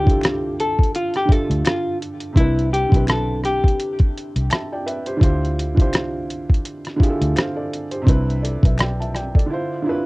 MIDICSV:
0, 0, Header, 1, 5, 480
1, 0, Start_track
1, 0, Tempo, 714286
1, 1584, Time_signature, 4, 2, 24, 8
1, 6759, End_track
2, 0, Start_track
2, 0, Title_t, "Felt piano"
2, 0, Program_c, 0, 0
2, 0, Control_c, 0, 64, 127
2, 0, Note_on_c, 0, 50, 97
2, 0, Note_on_c, 0, 62, 81
2, 0, Note_on_c, 0, 64, 84
2, 0, Note_on_c, 0, 65, 79
2, 0, Note_on_c, 0, 67, 89
2, 0, Note_on_c, 0, 69, 51
2, 0, Note_on_c, 0, 72, 101
2, 0, Note_on_c, 0, 74, 62
2, 28, Note_off_c, 0, 50, 0
2, 28, Note_on_c, 0, 50, 69
2, 36, Note_off_c, 0, 62, 0
2, 36, Note_on_c, 0, 62, 65
2, 45, Note_off_c, 0, 64, 0
2, 45, Note_on_c, 0, 64, 64
2, 57, Note_off_c, 0, 65, 0
2, 57, Note_on_c, 0, 65, 65
2, 64, Note_off_c, 0, 67, 0
2, 64, Note_on_c, 0, 67, 63
2, 73, Note_off_c, 0, 69, 0
2, 73, Note_on_c, 0, 69, 76
2, 664, Note_off_c, 0, 50, 0
2, 668, Note_off_c, 0, 62, 0
2, 672, Note_off_c, 0, 64, 0
2, 678, Note_off_c, 0, 65, 0
2, 682, Note_off_c, 0, 67, 0
2, 686, Note_off_c, 0, 69, 0
2, 843, Note_on_c, 0, 50, 80
2, 851, Note_on_c, 0, 62, 68
2, 865, Note_on_c, 0, 76, 71
2, 870, Note_on_c, 0, 65, 69
2, 879, Note_on_c, 0, 67, 69
2, 891, Note_on_c, 0, 69, 84
2, 1417, Note_off_c, 0, 50, 0
2, 1421, Note_off_c, 0, 62, 0
2, 1428, Note_off_c, 0, 76, 0
2, 1430, Note_off_c, 0, 65, 0
2, 1434, Note_off_c, 0, 67, 0
2, 1441, Note_off_c, 0, 69, 0
2, 1564, Note_on_c, 0, 48, 77
2, 1577, Note_on_c, 0, 60, 68
2, 1589, Note_on_c, 0, 62, 70
2, 1594, Control_c, 0, 64, 0
2, 1596, Note_off_c, 0, 74, 0
2, 1598, Note_off_c, 0, 72, 0
2, 1599, Note_on_c, 0, 64, 72
2, 1614, Note_on_c, 0, 71, 86
2, 1692, Control_c, 0, 64, 127
2, 1856, Note_off_c, 0, 48, 0
2, 1862, Note_off_c, 0, 60, 0
2, 1868, Note_off_c, 0, 62, 0
2, 1873, Note_off_c, 0, 64, 0
2, 1880, Note_off_c, 0, 71, 0
2, 1942, Note_on_c, 0, 50, 69
2, 1952, Note_on_c, 0, 60, 63
2, 1967, Note_on_c, 0, 62, 64
2, 1978, Note_on_c, 0, 64, 62
2, 1989, Note_on_c, 0, 71, 78
2, 2581, Note_off_c, 0, 50, 0
2, 2586, Note_off_c, 0, 60, 0
2, 2593, Note_off_c, 0, 62, 0
2, 2599, Note_off_c, 0, 64, 0
2, 2604, Note_off_c, 0, 71, 0
2, 3027, Note_on_c, 0, 81, 63
2, 3032, Note_on_c, 0, 76, 54
2, 3162, Note_off_c, 0, 81, 0
2, 3164, Note_off_c, 0, 76, 0
2, 3174, Note_on_c, 0, 79, 69
2, 3176, Note_on_c, 0, 74, 58
2, 3263, Note_off_c, 0, 79, 0
2, 3264, Note_off_c, 0, 74, 0
2, 3267, Note_on_c, 0, 76, 75
2, 3269, Note_on_c, 0, 71, 62
2, 3401, Note_off_c, 0, 76, 0
2, 3403, Note_off_c, 0, 71, 0
2, 3405, Note_on_c, 0, 72, 67
2, 3408, Note_on_c, 0, 67, 54
2, 3473, Note_on_c, 0, 50, 91
2, 3483, Note_on_c, 0, 62, 84
2, 3493, Note_on_c, 0, 64, 83
2, 3500, Note_off_c, 0, 67, 0
2, 3504, Note_on_c, 0, 65, 81
2, 3511, Note_off_c, 0, 72, 0
2, 3511, Note_on_c, 0, 67, 82
2, 3514, Control_c, 0, 64, 0
2, 3521, Note_on_c, 0, 72, 108
2, 3623, Control_c, 0, 64, 127
2, 3770, Note_off_c, 0, 50, 0
2, 3775, Note_off_c, 0, 62, 0
2, 3780, Note_off_c, 0, 64, 0
2, 3786, Note_off_c, 0, 65, 0
2, 3789, Note_off_c, 0, 67, 0
2, 3794, Note_off_c, 0, 72, 0
2, 3862, Note_on_c, 0, 50, 81
2, 3871, Note_on_c, 0, 62, 76
2, 3882, Note_on_c, 0, 64, 73
2, 3890, Note_on_c, 0, 65, 80
2, 3900, Note_on_c, 0, 67, 73
2, 3909, Note_on_c, 0, 72, 91
2, 4501, Note_off_c, 0, 50, 0
2, 4505, Note_off_c, 0, 62, 0
2, 4510, Note_off_c, 0, 64, 0
2, 4515, Note_off_c, 0, 65, 0
2, 4520, Note_off_c, 0, 67, 0
2, 4524, Note_off_c, 0, 72, 0
2, 4680, Note_on_c, 0, 50, 97
2, 4690, Note_on_c, 0, 62, 86
2, 4698, Note_on_c, 0, 64, 85
2, 4707, Note_on_c, 0, 65, 90
2, 4716, Note_on_c, 0, 67, 88
2, 4725, Note_on_c, 0, 68, 84
2, 4766, Note_off_c, 0, 68, 0
2, 4771, Note_on_c, 0, 69, 102
2, 4945, Note_on_c, 0, 77, 67
2, 4946, Note_on_c, 0, 72, 58
2, 4950, Note_off_c, 0, 67, 0
2, 4978, Note_off_c, 0, 69, 0
2, 5081, Note_off_c, 0, 72, 0
2, 5081, Note_off_c, 0, 77, 0
2, 5082, Note_on_c, 0, 74, 64
2, 5085, Note_on_c, 0, 69, 55
2, 5255, Note_off_c, 0, 50, 0
2, 5260, Note_off_c, 0, 62, 0
2, 5264, Note_off_c, 0, 64, 0
2, 5268, Note_off_c, 0, 65, 0
2, 5313, Note_off_c, 0, 74, 0
2, 5314, Note_off_c, 0, 69, 0
2, 5317, Note_on_c, 0, 72, 68
2, 5324, Note_on_c, 0, 67, 55
2, 5388, Note_on_c, 0, 48, 94
2, 5402, Note_on_c, 0, 60, 87
2, 5413, Note_on_c, 0, 62, 85
2, 5422, Note_on_c, 0, 64, 85
2, 5433, Control_c, 0, 64, 0
2, 5438, Note_on_c, 0, 71, 104
2, 5545, Control_c, 0, 64, 127
2, 5550, Note_off_c, 0, 72, 0
2, 5553, Note_off_c, 0, 67, 0
2, 5662, Note_on_c, 0, 74, 62
2, 5669, Note_on_c, 0, 69, 55
2, 5671, Note_off_c, 0, 71, 0
2, 5688, Note_off_c, 0, 48, 0
2, 5695, Note_off_c, 0, 60, 0
2, 5700, Note_off_c, 0, 62, 0
2, 5705, Note_off_c, 0, 64, 0
2, 5799, Note_off_c, 0, 74, 0
2, 5803, Note_off_c, 0, 69, 0
2, 5812, Note_on_c, 0, 76, 67
2, 5814, Note_on_c, 0, 71, 55
2, 5902, Note_off_c, 0, 76, 0
2, 5903, Note_off_c, 0, 71, 0
2, 5905, Note_on_c, 0, 79, 72
2, 5908, Note_on_c, 0, 74, 62
2, 6041, Note_off_c, 0, 79, 0
2, 6042, Note_off_c, 0, 74, 0
2, 6048, Note_on_c, 0, 81, 71
2, 6052, Note_on_c, 0, 76, 62
2, 6140, Note_off_c, 0, 81, 0
2, 6142, Note_off_c, 0, 76, 0
2, 6149, Note_on_c, 0, 79, 73
2, 6152, Note_on_c, 0, 74, 55
2, 6279, Note_off_c, 0, 74, 0
2, 6283, Note_off_c, 0, 79, 0
2, 6290, Note_on_c, 0, 74, 64
2, 6294, Note_on_c, 0, 69, 54
2, 6360, Note_on_c, 0, 50, 84
2, 6371, Note_on_c, 0, 62, 75
2, 6386, Note_on_c, 0, 64, 81
2, 6393, Control_c, 0, 64, 0
2, 6396, Note_on_c, 0, 65, 80
2, 6407, Note_on_c, 0, 72, 95
2, 6514, Control_c, 0, 64, 127
2, 6516, Note_off_c, 0, 74, 0
2, 6519, Note_off_c, 0, 69, 0
2, 6573, Note_off_c, 0, 50, 0
2, 6579, Note_off_c, 0, 62, 0
2, 6586, Note_off_c, 0, 64, 0
2, 6591, Note_off_c, 0, 65, 0
2, 6597, Note_off_c, 0, 72, 0
2, 6601, Note_on_c, 0, 50, 87
2, 6611, Note_on_c, 0, 62, 84
2, 6625, Note_on_c, 0, 64, 84
2, 6637, Note_on_c, 0, 65, 82
2, 6647, Note_on_c, 0, 71, 101
2, 6759, Note_off_c, 0, 50, 0
2, 6759, Note_off_c, 0, 62, 0
2, 6759, Note_off_c, 0, 64, 0
2, 6759, Note_off_c, 0, 65, 0
2, 6759, Note_off_c, 0, 71, 0
2, 6759, End_track
3, 0, Start_track
3, 0, Title_t, "Hollow-body jazz guitar"
3, 0, Program_c, 1, 26
3, 0, Note_on_c, 1, 67, 79
3, 365, Note_off_c, 1, 67, 0
3, 405, Note_on_c, 1, 69, 80
3, 612, Note_off_c, 1, 69, 0
3, 643, Note_on_c, 1, 65, 80
3, 763, Note_off_c, 1, 65, 0
3, 783, Note_on_c, 1, 67, 77
3, 886, Note_off_c, 1, 67, 0
3, 886, Note_on_c, 1, 69, 74
3, 1092, Note_off_c, 1, 69, 0
3, 1115, Note_on_c, 1, 65, 78
3, 1326, Note_off_c, 1, 65, 0
3, 1592, Note_on_c, 1, 64, 103
3, 1804, Note_off_c, 1, 64, 0
3, 1835, Note_on_c, 1, 67, 78
3, 2046, Note_off_c, 1, 67, 0
3, 2077, Note_on_c, 1, 69, 72
3, 2287, Note_off_c, 1, 69, 0
3, 2320, Note_on_c, 1, 67, 80
3, 2673, Note_off_c, 1, 67, 0
3, 6759, End_track
4, 0, Start_track
4, 0, Title_t, "Fingered electric bass"
4, 0, Program_c, 2, 33
4, 46, Note_on_c, 2, 36, 93
4, 597, Note_off_c, 2, 36, 0
4, 1007, Note_on_c, 2, 38, 90
4, 1090, Note_off_c, 2, 38, 0
4, 1584, Note_on_c, 2, 36, 108
4, 1911, Note_off_c, 2, 36, 0
4, 1962, Note_on_c, 2, 35, 89
4, 2515, Note_off_c, 2, 35, 0
4, 2929, Note_on_c, 2, 36, 89
4, 3011, Note_off_c, 2, 36, 0
4, 3505, Note_on_c, 2, 38, 102
4, 3880, Note_off_c, 2, 38, 0
4, 3880, Note_on_c, 2, 36, 92
4, 4434, Note_off_c, 2, 36, 0
4, 4848, Note_on_c, 2, 38, 92
4, 4931, Note_off_c, 2, 38, 0
4, 5424, Note_on_c, 2, 36, 107
4, 5751, Note_off_c, 2, 36, 0
4, 5800, Note_on_c, 2, 35, 90
4, 6354, Note_off_c, 2, 35, 0
4, 6759, End_track
5, 0, Start_track
5, 0, Title_t, "Drums"
5, 46, Note_on_c, 9, 36, 91
5, 64, Note_on_c, 9, 42, 48
5, 113, Note_off_c, 9, 36, 0
5, 131, Note_off_c, 9, 42, 0
5, 143, Note_on_c, 9, 26, 66
5, 157, Note_on_c, 9, 42, 85
5, 168, Note_on_c, 9, 37, 120
5, 210, Note_off_c, 9, 26, 0
5, 224, Note_off_c, 9, 42, 0
5, 235, Note_off_c, 9, 37, 0
5, 401, Note_on_c, 9, 42, 61
5, 469, Note_off_c, 9, 42, 0
5, 530, Note_on_c, 9, 36, 76
5, 561, Note_on_c, 9, 42, 38
5, 597, Note_off_c, 9, 36, 0
5, 628, Note_off_c, 9, 42, 0
5, 637, Note_on_c, 9, 42, 89
5, 704, Note_off_c, 9, 42, 0
5, 765, Note_on_c, 9, 42, 35
5, 778, Note_on_c, 9, 37, 30
5, 832, Note_off_c, 9, 42, 0
5, 845, Note_off_c, 9, 37, 0
5, 867, Note_on_c, 9, 36, 90
5, 887, Note_on_c, 9, 42, 57
5, 934, Note_off_c, 9, 36, 0
5, 955, Note_off_c, 9, 42, 0
5, 1014, Note_on_c, 9, 42, 52
5, 1081, Note_off_c, 9, 42, 0
5, 1107, Note_on_c, 9, 26, 69
5, 1112, Note_on_c, 9, 42, 89
5, 1124, Note_on_c, 9, 37, 112
5, 1174, Note_off_c, 9, 26, 0
5, 1179, Note_off_c, 9, 42, 0
5, 1191, Note_off_c, 9, 37, 0
5, 1358, Note_on_c, 9, 42, 59
5, 1426, Note_off_c, 9, 42, 0
5, 1481, Note_on_c, 9, 42, 52
5, 1548, Note_off_c, 9, 42, 0
5, 1585, Note_on_c, 9, 36, 108
5, 1594, Note_on_c, 9, 42, 81
5, 1652, Note_off_c, 9, 36, 0
5, 1662, Note_off_c, 9, 42, 0
5, 1739, Note_on_c, 9, 42, 35
5, 1806, Note_off_c, 9, 42, 0
5, 1841, Note_on_c, 9, 42, 75
5, 1908, Note_off_c, 9, 42, 0
5, 1962, Note_on_c, 9, 36, 92
5, 1977, Note_on_c, 9, 42, 47
5, 2029, Note_off_c, 9, 36, 0
5, 2044, Note_off_c, 9, 42, 0
5, 2064, Note_on_c, 9, 26, 62
5, 2070, Note_on_c, 9, 42, 85
5, 2081, Note_on_c, 9, 37, 117
5, 2131, Note_off_c, 9, 26, 0
5, 2138, Note_off_c, 9, 42, 0
5, 2148, Note_off_c, 9, 37, 0
5, 2309, Note_on_c, 9, 37, 34
5, 2317, Note_on_c, 9, 42, 62
5, 2377, Note_off_c, 9, 37, 0
5, 2384, Note_off_c, 9, 42, 0
5, 2446, Note_on_c, 9, 36, 74
5, 2473, Note_on_c, 9, 42, 41
5, 2513, Note_off_c, 9, 36, 0
5, 2540, Note_off_c, 9, 42, 0
5, 2551, Note_on_c, 9, 42, 86
5, 2619, Note_off_c, 9, 42, 0
5, 2680, Note_on_c, 9, 42, 34
5, 2686, Note_on_c, 9, 36, 86
5, 2747, Note_off_c, 9, 42, 0
5, 2753, Note_off_c, 9, 36, 0
5, 2806, Note_on_c, 9, 42, 55
5, 2873, Note_off_c, 9, 42, 0
5, 2930, Note_on_c, 9, 42, 56
5, 2997, Note_off_c, 9, 42, 0
5, 3025, Note_on_c, 9, 26, 67
5, 3030, Note_on_c, 9, 42, 85
5, 3042, Note_on_c, 9, 37, 118
5, 3092, Note_off_c, 9, 26, 0
5, 3097, Note_off_c, 9, 42, 0
5, 3109, Note_off_c, 9, 37, 0
5, 3277, Note_on_c, 9, 42, 62
5, 3344, Note_off_c, 9, 42, 0
5, 3402, Note_on_c, 9, 42, 50
5, 3469, Note_off_c, 9, 42, 0
5, 3503, Note_on_c, 9, 36, 112
5, 3514, Note_on_c, 9, 42, 79
5, 3570, Note_off_c, 9, 36, 0
5, 3581, Note_off_c, 9, 42, 0
5, 3662, Note_on_c, 9, 42, 36
5, 3729, Note_off_c, 9, 42, 0
5, 3759, Note_on_c, 9, 42, 72
5, 3826, Note_off_c, 9, 42, 0
5, 3881, Note_on_c, 9, 36, 98
5, 3896, Note_on_c, 9, 42, 47
5, 3948, Note_off_c, 9, 36, 0
5, 3963, Note_off_c, 9, 42, 0
5, 3984, Note_on_c, 9, 26, 66
5, 3988, Note_on_c, 9, 42, 89
5, 3999, Note_on_c, 9, 37, 115
5, 4052, Note_off_c, 9, 26, 0
5, 4056, Note_off_c, 9, 42, 0
5, 4066, Note_off_c, 9, 37, 0
5, 4236, Note_on_c, 9, 42, 62
5, 4303, Note_off_c, 9, 42, 0
5, 4366, Note_on_c, 9, 36, 76
5, 4397, Note_on_c, 9, 42, 41
5, 4433, Note_off_c, 9, 36, 0
5, 4464, Note_off_c, 9, 42, 0
5, 4471, Note_on_c, 9, 42, 81
5, 4538, Note_off_c, 9, 42, 0
5, 4602, Note_on_c, 9, 42, 37
5, 4616, Note_on_c, 9, 37, 32
5, 4670, Note_off_c, 9, 42, 0
5, 4683, Note_off_c, 9, 37, 0
5, 4704, Note_on_c, 9, 36, 86
5, 4726, Note_on_c, 9, 42, 59
5, 4771, Note_off_c, 9, 36, 0
5, 4793, Note_off_c, 9, 42, 0
5, 4849, Note_on_c, 9, 42, 57
5, 4916, Note_off_c, 9, 42, 0
5, 4947, Note_on_c, 9, 26, 65
5, 4951, Note_on_c, 9, 42, 88
5, 4963, Note_on_c, 9, 37, 117
5, 5014, Note_off_c, 9, 26, 0
5, 5018, Note_off_c, 9, 42, 0
5, 5030, Note_off_c, 9, 37, 0
5, 5199, Note_on_c, 9, 42, 60
5, 5266, Note_off_c, 9, 42, 0
5, 5319, Note_on_c, 9, 42, 51
5, 5386, Note_off_c, 9, 42, 0
5, 5423, Note_on_c, 9, 36, 115
5, 5433, Note_on_c, 9, 42, 82
5, 5490, Note_off_c, 9, 36, 0
5, 5501, Note_off_c, 9, 42, 0
5, 5579, Note_on_c, 9, 42, 36
5, 5646, Note_off_c, 9, 42, 0
5, 5677, Note_on_c, 9, 42, 81
5, 5744, Note_off_c, 9, 42, 0
5, 5800, Note_on_c, 9, 36, 97
5, 5814, Note_on_c, 9, 42, 46
5, 5867, Note_off_c, 9, 36, 0
5, 5881, Note_off_c, 9, 42, 0
5, 5899, Note_on_c, 9, 26, 65
5, 5906, Note_on_c, 9, 42, 90
5, 5917, Note_on_c, 9, 37, 116
5, 5966, Note_off_c, 9, 26, 0
5, 5974, Note_off_c, 9, 42, 0
5, 5984, Note_off_c, 9, 37, 0
5, 6061, Note_on_c, 9, 42, 35
5, 6128, Note_off_c, 9, 42, 0
5, 6147, Note_on_c, 9, 37, 34
5, 6155, Note_on_c, 9, 42, 59
5, 6214, Note_off_c, 9, 37, 0
5, 6222, Note_off_c, 9, 42, 0
5, 6284, Note_on_c, 9, 36, 80
5, 6312, Note_on_c, 9, 42, 40
5, 6351, Note_off_c, 9, 36, 0
5, 6379, Note_off_c, 9, 42, 0
5, 6759, End_track
0, 0, End_of_file